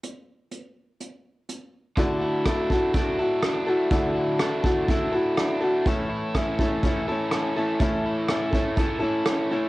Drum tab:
HH |x-x-x-x-|x-x-x-x-|x-x-x-x-|x-x-x-x-|
SD |--------|--r---r-|--r---r-|--r---r-|
BD |--------|o-ooo---|o--oo---|o-ooo---|

HH |x-x-x-x-|
SD |--r---r-|
BD |o--oo---|